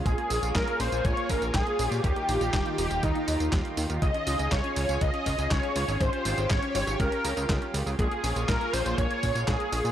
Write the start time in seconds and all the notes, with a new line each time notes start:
Already playing: F4
0.06 A#1 G#3 A#3 G#4 C#5, kick, closed hi-hat, tambourine
0.18 A#3, closed hi-hat
0.30 A#1 C#4, open hi-hat, tambourine
0.43 A#1 F4, closed hi-hat, tambourine
0.55 A#1 G#3 A#4, kick, snare, clap, closed hi-hat, tambourine
0.68 A#3, closed hi-hat
0.80 A#1 C#4 C5, open hi-hat, tambourine
0.92 A#1 F4, closed hi-hat, tambourine
1.05 A#1 G#3 C#5, kick, closed hi-hat, tambourine
1.17 A#3, closed hi-hat
1.29 A#1 C#4 A#4, kick, open hi-hat, tambourine
1.42 A#1 F4, closed hi-hat, tambourine
1.54 A#1 G#3 G#4, kick, snare, clap, closed hi-hat, tambourine
1.67 A#3, closed hi-hat
1.79 A#1 C#4, open hi-hat, tambourine
1.89 A#2 F4 G4, tambourine
2.04 D#2 D#3 G3 D#4 G4, kick, closed hi-hat, tambourine
2.16 A#3, closed hi-hat
2.29 A#1 D#4, open hi-hat, tambourine
2.41 A#1 F4, closed hi-hat, tambourine
2.53 D#1 G3, kick, snare, clap, closed hi-hat, tambourine
2.66 A#3, closed hi-hat
2.78 D#1 D#4 G4, open hi-hat, tambourine
2.91 D#1 F4, closed hi-hat, tambourine
3.03 D#2 G3 D#4, kick, closed hi-hat, tambourine
3.15 A#3, closed hi-hat
3.28 D#2 D#4, open hi-hat, tambourine
3.40 D#2 F4, closed hi-hat, tambourine
3.53 D#2 G3, kick, snare, clap, closed hi-hat, tambourine
3.65 A#3, closed hi-hat
3.77 D#2 D#4, open hi-hat, tambourine
3.90 D#2 F4, closed hi-hat, tambourine
4.02 C#2 G#3 C#4 G#4 D#5, kick, closed hi-hat, tambourine
4.14 C#4, closed hi-hat
4.27 C#2 F4, open hi-hat, tambourine
4.39 C#2 G#4, closed hi-hat, tambourine
4.52 C#2 G#3 C#5, kick, snare, clap, closed hi-hat, tambourine
4.64 C#4, closed hi-hat
4.76 C#2 F4 C#5, open hi-hat, tambourine
4.89 C#2 G#4, closed hi-hat, tambourine
5.01 C#2 G#3 D#5, kick, closed hi-hat, tambourine
5.14 C#4, closed hi-hat
5.26 C#2 F4, kick, open hi-hat, tambourine
5.39 C#2 G#4, closed hi-hat, tambourine
5.51 C#2 G#3 C#5, kick, snare, clap, closed hi-hat, tambourine
5.63 C#4, closed hi-hat
5.76 C#2 F4, open hi-hat, tambourine
5.88 G#1 G#4, tambourine
6.01 G#1 G#3 G4 C5, kick, closed hi-hat, tambourine
6.13 C#4, closed hi-hat
6.25 G#1 F4, open hi-hat, tambourine
6.38 G#1 G#4, closed hi-hat, tambourine
6.50 G#1 G#3 C#5, kick, snare, clap, closed hi-hat, tambourine
6.62 C#4, closed hi-hat
6.75 G#1 F4 C#5, open hi-hat, tambourine
6.87 G#1 G#4, closed hi-hat, tambourine
7.00 C#2 G#3 A#4, kick, closed hi-hat, tambourine
7.12 C#4, closed hi-hat
7.24 C#2 F4, open hi-hat, tambourine
7.37 C#2 G#4, closed hi-hat, tambourine
7.49 C#2 G#3, kick, snare, clap, closed hi-hat, tambourine
7.62 C#4, closed hi-hat
7.74 C#2 F4, open hi-hat, tambourine
7.86 C#2 G#4, tambourine
7.99 A#1 G#3 A#3 F4 G#4 C#5, kick, closed hi-hat, tambourine
8.11 A#3, closed hi-hat
8.24 A#1 C#4, open hi-hat, tambourine
8.36 A#1 F4, closed hi-hat, tambourine
8.48 A#1 G#3 A#4, kick, snare, clap, closed hi-hat, tambourine
8.61 A#3, closed hi-hat
8.73 A#1 C#4 C5, open hi-hat, tambourine
8.86 A#1 F4, closed hi-hat, tambourine
8.98 A#1 G#3 C#5, kick, closed hi-hat, tambourine
9.10 A#3, closed hi-hat
9.23 A#1 C#4, kick, open hi-hat, tambourine
9.35 A#1 F4, closed hi-hat, tambourine
9.47 A#1 G#3 G#4, kick, snare, clap, closed hi-hat, tambourine
9.60 A#3, closed hi-hat
9.72 A#1 C#4, open hi-hat, tambourine
9.85 A#2 F4, tambourine